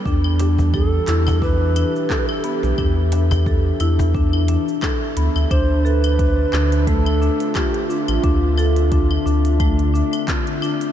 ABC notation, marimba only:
X:1
M:4/4
L:1/16
Q:"Swing 16ths" 1/4=88
K:Ddor
V:1 name="Marimba"
D z D2 A z E2 D z D2 A z B,2 | D z D2 A z E2 D z D2 A z B,2 | D2 A z D2 D2 A,2 D z F2 D2 | D2 A z D2 D2 A,2 D z F2 D2 |]